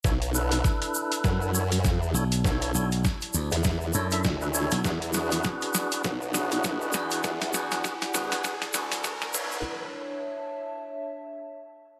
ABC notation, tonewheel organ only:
X:1
M:4/4
L:1/16
Q:"Swing 16ths" 1/4=100
K:Bdor
V:1 name="Tonewheel organ"
[DEAc] z [DEAB]8 [DEAc] z3 [DEAc] z | [DEAc]2 [DEAc] z6 z [DEAc] [DEAe] z [DEAB] [DEAc]2 | [DFGB] z [DFGB]6 [DFGB] z [DFGB]6 | [DFGB] z [DFGB]2 [DFGB] z [DFGB]2 [DFGB] z [DFGB] z [DFGB] z [DEAc]2 |
z16 |]